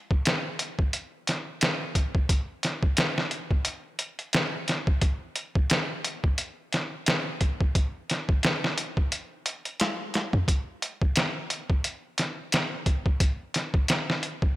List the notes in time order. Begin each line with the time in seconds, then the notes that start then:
0.11 kick
0.25 snare, closed hi-hat
0.59 closed hi-hat
0.79 kick
0.93 closed hi-hat
1.27 snare, closed hi-hat
1.61 snare, closed hi-hat
1.95 kick, closed hi-hat
2.15 kick
2.29 kick, closed hi-hat
2.63 snare, closed hi-hat
2.83 kick
2.97 snare, closed hi-hat
3.18 snare
3.31 closed hi-hat
3.51 kick
3.65 closed hi-hat
3.99 closed hi-hat
4.19 closed hi-hat
4.33 snare, closed hi-hat
4.68 snare, closed hi-hat
4.87 kick
5.01 kick, closed hi-hat
5.36 closed hi-hat
5.55 kick
5.70 snare, closed hi-hat
6.04 closed hi-hat
6.24 kick
6.38 closed hi-hat
6.72 snare, closed hi-hat
7.06 snare, closed hi-hat
7.41 kick, closed hi-hat
7.61 kick
7.75 kick, closed hi-hat
8.10 snare, closed hi-hat
8.29 kick
8.43 snare, closed hi-hat
8.64 snare
8.78 closed hi-hat
8.97 kick
9.12 closed hi-hat
9.46 closed hi-hat
9.65 closed hi-hat
9.80 snare, closed hi-hat
10.14 snare, closed hi-hat
10.33 kick
10.48 kick, closed hi-hat
10.82 closed hi-hat
11.02 kick
11.16 snare, closed hi-hat
11.50 closed hi-hat
11.70 kick
11.84 closed hi-hat
12.18 snare, closed hi-hat
12.52 snare, closed hi-hat
12.86 kick, closed hi-hat
13.06 kick
13.20 kick, closed hi-hat
13.54 snare, closed hi-hat
13.74 kick
13.88 snare, closed hi-hat
14.10 snare
14.23 closed hi-hat
14.42 kick